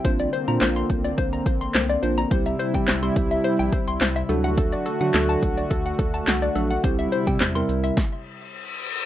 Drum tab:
HH |xxxxxxxxxxxxxxxx|xxxxxxxxxxxxxxxx|xxxxxxxxxxxxxxxx|xxxxxxxx--------|
CP |----x-------x---|----x-------x---|----x-------x---|----x-----------|
SD |----o-------o---|----o-------o---|----o-------o---|----o---o-------|
BD |o-----o-o-o-----|o--o--o---o-----|o-----o-o-o-----|o--o----o-------|